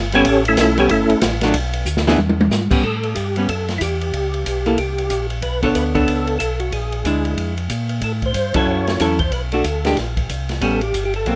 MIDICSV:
0, 0, Header, 1, 5, 480
1, 0, Start_track
1, 0, Tempo, 323799
1, 375, Time_signature, 4, 2, 24, 8
1, 16833, End_track
2, 0, Start_track
2, 0, Title_t, "Tonewheel organ"
2, 0, Program_c, 0, 16
2, 224, Note_on_c, 0, 73, 105
2, 225, Note_on_c, 0, 61, 79
2, 239, Note_on_c, 0, 69, 81
2, 240, Note_on_c, 0, 67, 76
2, 653, Note_off_c, 0, 61, 0
2, 653, Note_off_c, 0, 73, 0
2, 661, Note_off_c, 0, 67, 0
2, 661, Note_off_c, 0, 69, 0
2, 716, Note_on_c, 0, 64, 84
2, 718, Note_on_c, 0, 69, 101
2, 722, Note_on_c, 0, 57, 80
2, 727, Note_on_c, 0, 61, 75
2, 869, Note_off_c, 0, 69, 0
2, 872, Note_off_c, 0, 64, 0
2, 875, Note_off_c, 0, 57, 0
2, 877, Note_off_c, 0, 61, 0
2, 887, Note_on_c, 0, 69, 90
2, 900, Note_on_c, 0, 61, 68
2, 902, Note_on_c, 0, 57, 74
2, 904, Note_on_c, 0, 64, 67
2, 1155, Note_off_c, 0, 69, 0
2, 1161, Note_off_c, 0, 61, 0
2, 1163, Note_off_c, 0, 57, 0
2, 1164, Note_off_c, 0, 64, 0
2, 1169, Note_on_c, 0, 73, 112
2, 1179, Note_on_c, 0, 61, 94
2, 1182, Note_on_c, 0, 67, 104
2, 1187, Note_on_c, 0, 69, 103
2, 1330, Note_off_c, 0, 69, 0
2, 1335, Note_off_c, 0, 61, 0
2, 1337, Note_off_c, 0, 73, 0
2, 1343, Note_off_c, 0, 67, 0
2, 1345, Note_on_c, 0, 64, 71
2, 1348, Note_on_c, 0, 69, 96
2, 1353, Note_on_c, 0, 61, 70
2, 1355, Note_on_c, 0, 57, 73
2, 1782, Note_off_c, 0, 64, 0
2, 1784, Note_off_c, 0, 69, 0
2, 1786, Note_off_c, 0, 61, 0
2, 1788, Note_off_c, 0, 57, 0
2, 4203, Note_on_c, 0, 69, 81
2, 4666, Note_on_c, 0, 67, 70
2, 4695, Note_off_c, 0, 69, 0
2, 5167, Note_off_c, 0, 67, 0
2, 5178, Note_on_c, 0, 69, 75
2, 5541, Note_off_c, 0, 69, 0
2, 5608, Note_on_c, 0, 64, 56
2, 5655, Note_on_c, 0, 67, 74
2, 5663, Note_off_c, 0, 64, 0
2, 7029, Note_off_c, 0, 67, 0
2, 7092, Note_on_c, 0, 67, 86
2, 7808, Note_off_c, 0, 67, 0
2, 8044, Note_on_c, 0, 71, 97
2, 8317, Note_off_c, 0, 71, 0
2, 8355, Note_on_c, 0, 69, 90
2, 8435, Note_off_c, 0, 69, 0
2, 8526, Note_on_c, 0, 71, 91
2, 8658, Note_off_c, 0, 71, 0
2, 8828, Note_on_c, 0, 69, 104
2, 9453, Note_off_c, 0, 69, 0
2, 9471, Note_on_c, 0, 69, 86
2, 9779, Note_on_c, 0, 66, 73
2, 9782, Note_off_c, 0, 69, 0
2, 9970, Note_off_c, 0, 66, 0
2, 9972, Note_on_c, 0, 68, 77
2, 10870, Note_off_c, 0, 68, 0
2, 11916, Note_on_c, 0, 69, 82
2, 12043, Note_off_c, 0, 69, 0
2, 12239, Note_on_c, 0, 72, 109
2, 12660, Note_off_c, 0, 72, 0
2, 12707, Note_on_c, 0, 73, 105
2, 13351, Note_off_c, 0, 73, 0
2, 13369, Note_on_c, 0, 73, 90
2, 13493, Note_off_c, 0, 73, 0
2, 13635, Note_on_c, 0, 72, 85
2, 13820, Note_off_c, 0, 72, 0
2, 13832, Note_on_c, 0, 71, 89
2, 13960, Note_off_c, 0, 71, 0
2, 14136, Note_on_c, 0, 69, 66
2, 14741, Note_off_c, 0, 69, 0
2, 15777, Note_on_c, 0, 69, 102
2, 16031, Note_off_c, 0, 69, 0
2, 16052, Note_on_c, 0, 67, 89
2, 16366, Note_off_c, 0, 67, 0
2, 16384, Note_on_c, 0, 67, 71
2, 16510, Note_off_c, 0, 67, 0
2, 16541, Note_on_c, 0, 69, 96
2, 16833, Note_off_c, 0, 69, 0
2, 16833, End_track
3, 0, Start_track
3, 0, Title_t, "Hollow-body jazz guitar"
3, 0, Program_c, 1, 26
3, 202, Note_on_c, 1, 55, 81
3, 216, Note_on_c, 1, 59, 89
3, 224, Note_on_c, 1, 61, 95
3, 362, Note_off_c, 1, 55, 0
3, 369, Note_off_c, 1, 59, 0
3, 373, Note_off_c, 1, 61, 0
3, 1158, Note_on_c, 1, 55, 65
3, 1167, Note_on_c, 1, 59, 72
3, 1177, Note_on_c, 1, 61, 81
3, 1318, Note_off_c, 1, 55, 0
3, 1322, Note_off_c, 1, 59, 0
3, 1327, Note_off_c, 1, 61, 0
3, 2123, Note_on_c, 1, 54, 76
3, 2129, Note_on_c, 1, 57, 95
3, 2139, Note_on_c, 1, 62, 99
3, 2278, Note_off_c, 1, 54, 0
3, 2281, Note_off_c, 1, 57, 0
3, 2286, Note_off_c, 1, 62, 0
3, 3072, Note_on_c, 1, 59, 81
3, 3076, Note_on_c, 1, 52, 78
3, 3077, Note_on_c, 1, 62, 85
3, 3087, Note_on_c, 1, 68, 88
3, 3230, Note_off_c, 1, 59, 0
3, 3232, Note_off_c, 1, 52, 0
3, 3233, Note_off_c, 1, 62, 0
3, 3238, Note_off_c, 1, 68, 0
3, 4011, Note_on_c, 1, 55, 64
3, 4022, Note_on_c, 1, 59, 73
3, 4038, Note_on_c, 1, 61, 73
3, 4179, Note_off_c, 1, 55, 0
3, 4185, Note_off_c, 1, 59, 0
3, 4192, Note_off_c, 1, 61, 0
3, 4997, Note_on_c, 1, 55, 55
3, 5010, Note_on_c, 1, 59, 64
3, 5025, Note_on_c, 1, 61, 61
3, 5152, Note_off_c, 1, 55, 0
3, 5158, Note_off_c, 1, 59, 0
3, 5166, Note_off_c, 1, 61, 0
3, 6911, Note_on_c, 1, 58, 61
3, 6918, Note_on_c, 1, 64, 54
3, 6927, Note_on_c, 1, 69, 69
3, 7070, Note_off_c, 1, 58, 0
3, 7073, Note_off_c, 1, 64, 0
3, 7077, Note_off_c, 1, 69, 0
3, 8340, Note_on_c, 1, 59, 64
3, 8348, Note_on_c, 1, 62, 65
3, 8350, Note_on_c, 1, 69, 68
3, 8363, Note_on_c, 1, 73, 74
3, 8790, Note_off_c, 1, 59, 0
3, 8793, Note_off_c, 1, 62, 0
3, 8795, Note_off_c, 1, 69, 0
3, 8801, Note_off_c, 1, 73, 0
3, 8815, Note_on_c, 1, 59, 61
3, 8819, Note_on_c, 1, 69, 62
3, 8822, Note_on_c, 1, 62, 60
3, 8824, Note_on_c, 1, 73, 70
3, 9445, Note_off_c, 1, 59, 0
3, 9447, Note_off_c, 1, 69, 0
3, 9449, Note_off_c, 1, 62, 0
3, 9450, Note_off_c, 1, 73, 0
3, 10461, Note_on_c, 1, 56, 55
3, 10465, Note_on_c, 1, 62, 52
3, 10478, Note_on_c, 1, 64, 60
3, 11170, Note_off_c, 1, 56, 0
3, 11172, Note_off_c, 1, 62, 0
3, 11178, Note_off_c, 1, 64, 0
3, 12667, Note_on_c, 1, 54, 66
3, 12676, Note_on_c, 1, 61, 61
3, 12681, Note_on_c, 1, 64, 62
3, 12691, Note_on_c, 1, 69, 76
3, 13294, Note_off_c, 1, 54, 0
3, 13299, Note_off_c, 1, 61, 0
3, 13301, Note_off_c, 1, 64, 0
3, 13306, Note_off_c, 1, 69, 0
3, 13347, Note_on_c, 1, 54, 57
3, 13351, Note_on_c, 1, 61, 57
3, 13358, Note_on_c, 1, 64, 61
3, 13363, Note_on_c, 1, 69, 70
3, 13604, Note_off_c, 1, 54, 0
3, 13606, Note_off_c, 1, 61, 0
3, 13609, Note_off_c, 1, 64, 0
3, 13612, Note_off_c, 1, 69, 0
3, 14124, Note_on_c, 1, 57, 62
3, 14134, Note_on_c, 1, 62, 67
3, 14146, Note_on_c, 1, 66, 67
3, 14281, Note_off_c, 1, 57, 0
3, 14286, Note_off_c, 1, 62, 0
3, 14293, Note_off_c, 1, 66, 0
3, 14603, Note_on_c, 1, 56, 61
3, 14617, Note_on_c, 1, 62, 77
3, 14627, Note_on_c, 1, 67, 78
3, 14761, Note_off_c, 1, 56, 0
3, 14768, Note_off_c, 1, 62, 0
3, 14773, Note_off_c, 1, 67, 0
3, 15734, Note_on_c, 1, 55, 62
3, 15740, Note_on_c, 1, 59, 56
3, 15748, Note_on_c, 1, 61, 75
3, 15999, Note_off_c, 1, 55, 0
3, 16002, Note_off_c, 1, 59, 0
3, 16006, Note_off_c, 1, 61, 0
3, 16706, Note_on_c, 1, 54, 52
3, 16714, Note_on_c, 1, 58, 58
3, 16723, Note_on_c, 1, 60, 60
3, 16833, Note_off_c, 1, 54, 0
3, 16833, Note_off_c, 1, 58, 0
3, 16833, Note_off_c, 1, 60, 0
3, 16833, End_track
4, 0, Start_track
4, 0, Title_t, "Tonewheel organ"
4, 0, Program_c, 2, 16
4, 0, Note_on_c, 2, 31, 102
4, 361, Note_off_c, 2, 31, 0
4, 370, Note_on_c, 2, 33, 101
4, 836, Note_off_c, 2, 33, 0
4, 847, Note_on_c, 2, 35, 101
4, 1313, Note_off_c, 2, 35, 0
4, 1328, Note_on_c, 2, 31, 95
4, 1599, Note_off_c, 2, 31, 0
4, 1617, Note_on_c, 2, 31, 39
4, 1711, Note_off_c, 2, 31, 0
4, 1801, Note_on_c, 2, 33, 108
4, 2268, Note_off_c, 2, 33, 0
4, 2285, Note_on_c, 2, 35, 99
4, 2749, Note_off_c, 2, 35, 0
4, 2750, Note_on_c, 2, 38, 98
4, 3220, Note_off_c, 2, 38, 0
4, 3236, Note_on_c, 2, 40, 92
4, 3703, Note_off_c, 2, 40, 0
4, 3706, Note_on_c, 2, 44, 99
4, 3986, Note_off_c, 2, 44, 0
4, 4016, Note_on_c, 2, 44, 45
4, 4108, Note_off_c, 2, 44, 0
4, 4200, Note_on_c, 2, 45, 78
4, 4665, Note_off_c, 2, 45, 0
4, 4680, Note_on_c, 2, 43, 84
4, 5145, Note_off_c, 2, 43, 0
4, 5164, Note_on_c, 2, 42, 71
4, 5627, Note_off_c, 2, 42, 0
4, 5647, Note_on_c, 2, 40, 88
4, 6109, Note_off_c, 2, 40, 0
4, 6129, Note_on_c, 2, 37, 86
4, 6590, Note_off_c, 2, 37, 0
4, 6612, Note_on_c, 2, 35, 85
4, 7072, Note_off_c, 2, 35, 0
4, 7092, Note_on_c, 2, 36, 78
4, 7553, Note_off_c, 2, 36, 0
4, 7568, Note_on_c, 2, 34, 79
4, 8031, Note_off_c, 2, 34, 0
4, 8045, Note_on_c, 2, 35, 91
4, 8510, Note_off_c, 2, 35, 0
4, 8525, Note_on_c, 2, 38, 93
4, 8990, Note_off_c, 2, 38, 0
4, 9009, Note_on_c, 2, 37, 79
4, 9472, Note_off_c, 2, 37, 0
4, 9484, Note_on_c, 2, 35, 88
4, 9950, Note_off_c, 2, 35, 0
4, 9963, Note_on_c, 2, 34, 80
4, 10430, Note_off_c, 2, 34, 0
4, 10442, Note_on_c, 2, 38, 90
4, 10910, Note_off_c, 2, 38, 0
4, 10932, Note_on_c, 2, 41, 77
4, 11395, Note_off_c, 2, 41, 0
4, 11410, Note_on_c, 2, 46, 85
4, 11874, Note_off_c, 2, 46, 0
4, 11883, Note_on_c, 2, 45, 89
4, 12352, Note_off_c, 2, 45, 0
4, 12366, Note_on_c, 2, 43, 84
4, 12641, Note_off_c, 2, 43, 0
4, 12673, Note_on_c, 2, 43, 35
4, 12763, Note_off_c, 2, 43, 0
4, 12835, Note_on_c, 2, 42, 79
4, 13308, Note_off_c, 2, 42, 0
4, 13339, Note_on_c, 2, 40, 86
4, 13801, Note_off_c, 2, 40, 0
4, 13811, Note_on_c, 2, 35, 82
4, 14277, Note_off_c, 2, 35, 0
4, 14293, Note_on_c, 2, 38, 88
4, 14758, Note_off_c, 2, 38, 0
4, 14774, Note_on_c, 2, 34, 81
4, 15239, Note_off_c, 2, 34, 0
4, 15265, Note_on_c, 2, 36, 88
4, 15725, Note_off_c, 2, 36, 0
4, 15734, Note_on_c, 2, 33, 86
4, 16200, Note_off_c, 2, 33, 0
4, 16221, Note_on_c, 2, 31, 92
4, 16684, Note_off_c, 2, 31, 0
4, 16696, Note_on_c, 2, 35, 78
4, 16833, Note_off_c, 2, 35, 0
4, 16833, End_track
5, 0, Start_track
5, 0, Title_t, "Drums"
5, 181, Note_on_c, 9, 51, 57
5, 329, Note_off_c, 9, 51, 0
5, 367, Note_on_c, 9, 51, 81
5, 378, Note_on_c, 9, 36, 23
5, 515, Note_off_c, 9, 51, 0
5, 526, Note_off_c, 9, 36, 0
5, 668, Note_on_c, 9, 51, 58
5, 817, Note_off_c, 9, 51, 0
5, 845, Note_on_c, 9, 44, 68
5, 845, Note_on_c, 9, 51, 79
5, 853, Note_on_c, 9, 38, 88
5, 855, Note_on_c, 9, 36, 22
5, 994, Note_off_c, 9, 44, 0
5, 994, Note_off_c, 9, 51, 0
5, 1001, Note_off_c, 9, 38, 0
5, 1003, Note_off_c, 9, 36, 0
5, 1149, Note_on_c, 9, 51, 54
5, 1298, Note_off_c, 9, 51, 0
5, 1323, Note_on_c, 9, 51, 74
5, 1333, Note_on_c, 9, 36, 28
5, 1472, Note_off_c, 9, 51, 0
5, 1481, Note_off_c, 9, 36, 0
5, 1624, Note_on_c, 9, 51, 57
5, 1773, Note_off_c, 9, 51, 0
5, 1801, Note_on_c, 9, 44, 62
5, 1801, Note_on_c, 9, 51, 82
5, 1808, Note_on_c, 9, 36, 28
5, 1808, Note_on_c, 9, 38, 85
5, 1949, Note_off_c, 9, 44, 0
5, 1949, Note_off_c, 9, 51, 0
5, 1956, Note_off_c, 9, 36, 0
5, 1956, Note_off_c, 9, 38, 0
5, 2093, Note_on_c, 9, 51, 59
5, 2101, Note_on_c, 9, 38, 60
5, 2242, Note_off_c, 9, 51, 0
5, 2249, Note_off_c, 9, 38, 0
5, 2279, Note_on_c, 9, 51, 78
5, 2285, Note_on_c, 9, 36, 27
5, 2427, Note_off_c, 9, 51, 0
5, 2433, Note_off_c, 9, 36, 0
5, 2570, Note_on_c, 9, 51, 57
5, 2719, Note_off_c, 9, 51, 0
5, 2751, Note_on_c, 9, 44, 72
5, 2899, Note_off_c, 9, 44, 0
5, 2919, Note_on_c, 9, 38, 69
5, 3068, Note_off_c, 9, 38, 0
5, 3083, Note_on_c, 9, 38, 83
5, 3231, Note_off_c, 9, 38, 0
5, 3236, Note_on_c, 9, 48, 76
5, 3384, Note_off_c, 9, 48, 0
5, 3401, Note_on_c, 9, 48, 93
5, 3549, Note_off_c, 9, 48, 0
5, 3567, Note_on_c, 9, 48, 112
5, 3715, Note_off_c, 9, 48, 0
5, 3720, Note_on_c, 9, 44, 65
5, 3728, Note_on_c, 9, 38, 63
5, 3869, Note_off_c, 9, 44, 0
5, 3876, Note_off_c, 9, 38, 0
5, 4019, Note_on_c, 9, 49, 93
5, 4020, Note_on_c, 9, 36, 84
5, 4167, Note_off_c, 9, 49, 0
5, 4168, Note_off_c, 9, 36, 0
5, 4207, Note_on_c, 9, 36, 25
5, 4355, Note_off_c, 9, 36, 0
5, 4497, Note_on_c, 9, 51, 42
5, 4645, Note_off_c, 9, 51, 0
5, 4676, Note_on_c, 9, 44, 45
5, 4676, Note_on_c, 9, 51, 65
5, 4688, Note_on_c, 9, 36, 20
5, 4825, Note_off_c, 9, 44, 0
5, 4825, Note_off_c, 9, 51, 0
5, 4836, Note_off_c, 9, 36, 0
5, 4979, Note_on_c, 9, 51, 41
5, 5127, Note_off_c, 9, 51, 0
5, 5168, Note_on_c, 9, 51, 65
5, 5172, Note_on_c, 9, 36, 22
5, 5316, Note_off_c, 9, 51, 0
5, 5320, Note_off_c, 9, 36, 0
5, 5462, Note_on_c, 9, 51, 45
5, 5469, Note_on_c, 9, 38, 43
5, 5610, Note_off_c, 9, 51, 0
5, 5617, Note_off_c, 9, 38, 0
5, 5647, Note_on_c, 9, 44, 56
5, 5647, Note_on_c, 9, 51, 68
5, 5654, Note_on_c, 9, 36, 26
5, 5795, Note_off_c, 9, 44, 0
5, 5795, Note_off_c, 9, 51, 0
5, 5802, Note_off_c, 9, 36, 0
5, 5950, Note_on_c, 9, 51, 45
5, 6098, Note_off_c, 9, 51, 0
5, 6130, Note_on_c, 9, 51, 63
5, 6136, Note_on_c, 9, 36, 20
5, 6278, Note_off_c, 9, 51, 0
5, 6284, Note_off_c, 9, 36, 0
5, 6429, Note_on_c, 9, 51, 42
5, 6577, Note_off_c, 9, 51, 0
5, 6612, Note_on_c, 9, 44, 47
5, 6612, Note_on_c, 9, 51, 68
5, 6616, Note_on_c, 9, 36, 19
5, 6761, Note_off_c, 9, 44, 0
5, 6761, Note_off_c, 9, 51, 0
5, 6764, Note_off_c, 9, 36, 0
5, 6906, Note_on_c, 9, 51, 41
5, 7055, Note_off_c, 9, 51, 0
5, 7082, Note_on_c, 9, 51, 56
5, 7092, Note_on_c, 9, 36, 18
5, 7231, Note_off_c, 9, 51, 0
5, 7240, Note_off_c, 9, 36, 0
5, 7386, Note_on_c, 9, 51, 46
5, 7535, Note_off_c, 9, 51, 0
5, 7560, Note_on_c, 9, 44, 57
5, 7560, Note_on_c, 9, 51, 64
5, 7569, Note_on_c, 9, 36, 24
5, 7708, Note_off_c, 9, 44, 0
5, 7708, Note_off_c, 9, 51, 0
5, 7718, Note_off_c, 9, 36, 0
5, 7857, Note_on_c, 9, 51, 46
5, 8006, Note_off_c, 9, 51, 0
5, 8039, Note_on_c, 9, 51, 61
5, 8046, Note_on_c, 9, 36, 23
5, 8187, Note_off_c, 9, 51, 0
5, 8195, Note_off_c, 9, 36, 0
5, 8339, Note_on_c, 9, 51, 45
5, 8343, Note_on_c, 9, 36, 50
5, 8488, Note_off_c, 9, 51, 0
5, 8491, Note_off_c, 9, 36, 0
5, 8523, Note_on_c, 9, 44, 52
5, 8523, Note_on_c, 9, 51, 64
5, 8528, Note_on_c, 9, 36, 19
5, 8672, Note_off_c, 9, 44, 0
5, 8672, Note_off_c, 9, 51, 0
5, 8676, Note_off_c, 9, 36, 0
5, 8822, Note_on_c, 9, 51, 42
5, 8823, Note_on_c, 9, 36, 54
5, 8970, Note_off_c, 9, 51, 0
5, 8972, Note_off_c, 9, 36, 0
5, 9007, Note_on_c, 9, 36, 26
5, 9009, Note_on_c, 9, 51, 63
5, 9155, Note_off_c, 9, 36, 0
5, 9157, Note_off_c, 9, 51, 0
5, 9300, Note_on_c, 9, 51, 43
5, 9449, Note_off_c, 9, 51, 0
5, 9486, Note_on_c, 9, 44, 52
5, 9486, Note_on_c, 9, 51, 69
5, 9488, Note_on_c, 9, 36, 21
5, 9635, Note_off_c, 9, 44, 0
5, 9635, Note_off_c, 9, 51, 0
5, 9637, Note_off_c, 9, 36, 0
5, 9780, Note_on_c, 9, 51, 43
5, 9928, Note_off_c, 9, 51, 0
5, 9966, Note_on_c, 9, 51, 58
5, 9968, Note_on_c, 9, 36, 21
5, 10114, Note_off_c, 9, 51, 0
5, 10117, Note_off_c, 9, 36, 0
5, 10263, Note_on_c, 9, 51, 42
5, 10411, Note_off_c, 9, 51, 0
5, 10450, Note_on_c, 9, 44, 51
5, 10450, Note_on_c, 9, 51, 62
5, 10452, Note_on_c, 9, 36, 24
5, 10598, Note_off_c, 9, 44, 0
5, 10598, Note_off_c, 9, 51, 0
5, 10601, Note_off_c, 9, 36, 0
5, 10745, Note_on_c, 9, 51, 42
5, 10894, Note_off_c, 9, 51, 0
5, 10935, Note_on_c, 9, 36, 21
5, 10935, Note_on_c, 9, 51, 56
5, 11083, Note_off_c, 9, 36, 0
5, 11083, Note_off_c, 9, 51, 0
5, 11229, Note_on_c, 9, 51, 44
5, 11377, Note_off_c, 9, 51, 0
5, 11409, Note_on_c, 9, 44, 56
5, 11409, Note_on_c, 9, 51, 63
5, 11413, Note_on_c, 9, 36, 24
5, 11557, Note_off_c, 9, 44, 0
5, 11557, Note_off_c, 9, 51, 0
5, 11561, Note_off_c, 9, 36, 0
5, 11698, Note_on_c, 9, 51, 46
5, 11847, Note_off_c, 9, 51, 0
5, 11881, Note_on_c, 9, 51, 63
5, 11892, Note_on_c, 9, 36, 27
5, 12029, Note_off_c, 9, 51, 0
5, 12041, Note_off_c, 9, 36, 0
5, 12187, Note_on_c, 9, 51, 43
5, 12191, Note_on_c, 9, 36, 48
5, 12335, Note_off_c, 9, 51, 0
5, 12339, Note_off_c, 9, 36, 0
5, 12366, Note_on_c, 9, 44, 48
5, 12366, Note_on_c, 9, 51, 65
5, 12375, Note_on_c, 9, 36, 21
5, 12515, Note_off_c, 9, 44, 0
5, 12515, Note_off_c, 9, 51, 0
5, 12523, Note_off_c, 9, 36, 0
5, 12661, Note_on_c, 9, 51, 72
5, 12672, Note_on_c, 9, 36, 72
5, 12810, Note_off_c, 9, 51, 0
5, 12820, Note_off_c, 9, 36, 0
5, 13155, Note_on_c, 9, 51, 43
5, 13162, Note_on_c, 9, 38, 55
5, 13303, Note_off_c, 9, 51, 0
5, 13310, Note_off_c, 9, 38, 0
5, 13337, Note_on_c, 9, 44, 55
5, 13337, Note_on_c, 9, 51, 67
5, 13341, Note_on_c, 9, 36, 18
5, 13485, Note_off_c, 9, 44, 0
5, 13485, Note_off_c, 9, 51, 0
5, 13489, Note_off_c, 9, 36, 0
5, 13623, Note_on_c, 9, 51, 46
5, 13634, Note_on_c, 9, 36, 59
5, 13772, Note_off_c, 9, 51, 0
5, 13782, Note_off_c, 9, 36, 0
5, 13812, Note_on_c, 9, 51, 57
5, 13818, Note_on_c, 9, 36, 25
5, 13960, Note_off_c, 9, 51, 0
5, 13967, Note_off_c, 9, 36, 0
5, 14109, Note_on_c, 9, 51, 42
5, 14257, Note_off_c, 9, 51, 0
5, 14295, Note_on_c, 9, 44, 50
5, 14295, Note_on_c, 9, 51, 68
5, 14300, Note_on_c, 9, 36, 21
5, 14443, Note_off_c, 9, 44, 0
5, 14443, Note_off_c, 9, 51, 0
5, 14449, Note_off_c, 9, 36, 0
5, 14595, Note_on_c, 9, 51, 42
5, 14603, Note_on_c, 9, 38, 57
5, 14744, Note_off_c, 9, 51, 0
5, 14751, Note_off_c, 9, 38, 0
5, 14776, Note_on_c, 9, 51, 54
5, 14783, Note_on_c, 9, 36, 23
5, 14783, Note_on_c, 9, 38, 34
5, 14924, Note_off_c, 9, 51, 0
5, 14931, Note_off_c, 9, 36, 0
5, 14931, Note_off_c, 9, 38, 0
5, 15076, Note_on_c, 9, 51, 45
5, 15077, Note_on_c, 9, 36, 52
5, 15224, Note_off_c, 9, 51, 0
5, 15225, Note_off_c, 9, 36, 0
5, 15261, Note_on_c, 9, 44, 55
5, 15261, Note_on_c, 9, 51, 62
5, 15264, Note_on_c, 9, 36, 22
5, 15409, Note_off_c, 9, 44, 0
5, 15409, Note_off_c, 9, 51, 0
5, 15413, Note_off_c, 9, 36, 0
5, 15551, Note_on_c, 9, 51, 45
5, 15558, Note_on_c, 9, 38, 35
5, 15699, Note_off_c, 9, 51, 0
5, 15706, Note_off_c, 9, 38, 0
5, 15734, Note_on_c, 9, 51, 64
5, 15740, Note_on_c, 9, 36, 22
5, 15882, Note_off_c, 9, 51, 0
5, 15888, Note_off_c, 9, 36, 0
5, 16028, Note_on_c, 9, 51, 47
5, 16176, Note_off_c, 9, 51, 0
5, 16217, Note_on_c, 9, 44, 62
5, 16217, Note_on_c, 9, 51, 59
5, 16221, Note_on_c, 9, 36, 25
5, 16366, Note_off_c, 9, 44, 0
5, 16366, Note_off_c, 9, 51, 0
5, 16369, Note_off_c, 9, 36, 0
5, 16508, Note_on_c, 9, 51, 42
5, 16656, Note_off_c, 9, 51, 0
5, 16691, Note_on_c, 9, 51, 57
5, 16698, Note_on_c, 9, 36, 24
5, 16833, Note_off_c, 9, 36, 0
5, 16833, Note_off_c, 9, 51, 0
5, 16833, End_track
0, 0, End_of_file